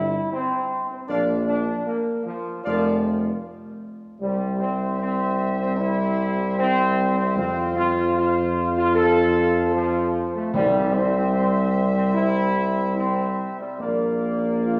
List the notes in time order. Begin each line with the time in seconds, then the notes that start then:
Already playing: G1 E4
0.31 C4
0.90 C4
1.08 A#1 D4 A#4 D5 F5
1.46 D4
1.86 A#3
2.25 F3
2.64 F1 F3 A#4 D5 F5
4.21 C2 G3 G4 C5 E5
4.59 C4
4.99 C4
5.58 C4
5.77 E4
6.57 C4
7.17 C4
7.36 F2 C4 F4 F5
7.76 F4
8.16 F4
8.76 F4
8.94 A4
9.74 F3
10.34 A3
10.54 C2 C3 G3 G4 C5 E5
10.94 C4
11.34 C4
11.94 C4
12.13 E4
12.96 C4
13.59 G3
13.79 A#1 A#3 A#4 D5 F5
14.64 F4